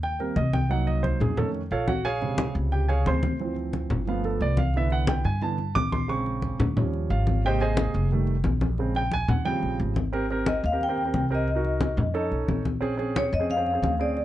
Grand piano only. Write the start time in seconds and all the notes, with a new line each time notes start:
0.03 G5
0.19 G3 A#3 C4 A#4
0.36 D#5
0.53 G5
0.69 F#3 A#3 D#4 F#5
0.87 D#5
1.03 C5
1.21 G#4
1.37 D#3 A3 C#4 A4
1.72 F4 A4 C#5 F5
1.88 F#4 F#5
2.05 G#4 C#5 F5 G#5
2.21 C3 C#3 G#3
2.72 G4 G5
2.88 G#4 C#5 F5 G#5
3.06 C#3 G#3 C4 C5 C6
3.40 E3 F3 C4
4.07 F3 A3 B3 F5
4.25 A4
4.42 D5
4.58 F5
4.76 D3 E3 B3 E5
4.92 F#5
5.09 G5
5.25 G#5
5.41 D3 E3 B3 A5
5.75 D6
5.92 C6
6.08 C#3 G#3 C4 C#6
6.76 F3 G3 C#4
7.10 F4 F5
7.45 C3 G#3 A#3 G4 C5 D#5 G5
7.61 G#4 C5 D#5 G#5
8.12 D#3 G3 A3
8.79 C#3 G#3 C4
8.96 G5
9.13 G#5
9.29 F#5
9.45 C#3 F3 G3 C4 G5
10.13 C4 G4 A#4
10.30 C4 G4 A#4
10.72 C4 G4 A#4
10.89 C4 G4 A#4
11.05 C4 G4 A#4
11.30 C4 G4 A#4
11.55 D#4 F#4 A#4
12.14 C#4 D#4 A4
12.81 C4 C#4 G#4
12.97 C4 C#4 G#4
13.40 C4 C#4 G#4
13.57 C4 C#4 G#4
13.73 C4 C#4 G#4
13.99 C4 C#4 G#4